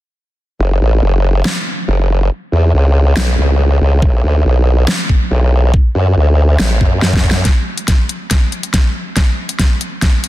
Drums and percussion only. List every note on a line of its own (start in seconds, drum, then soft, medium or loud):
1.45 snare loud
3.17 snare loud
4.02 kick loud
4.88 snare loud
5.09 kick medium
5.74 kick loud
6.59 snare loud
6.81 kick medium
7.02 snare medium
7.13 kick loud
7.13 snare medium
7.24 kick medium
7.31 snare medium
7.45 kick medium
7.45 snare soft
7.45 closed hi-hat medium
7.78 closed hi-hat soft
7.88 kick medium
7.88 snare soft
7.88 closed hi-hat medium
8.09 closed hi-hat medium
8.31 kick medium
8.31 snare soft
8.31 closed hi-hat medium
8.52 closed hi-hat soft
8.63 closed hi-hat soft
8.74 kick medium
8.74 snare medium
8.74 closed hi-hat medium
9.17 kick medium
9.17 snare medium
9.17 closed hi-hat medium
9.49 closed hi-hat medium
9.59 kick medium
9.59 snare medium
9.59 closed hi-hat medium
9.81 closed hi-hat soft
10.02 kick loud
10.02 snare medium
10.02 closed hi-hat medium
10.24 closed hi-hat soft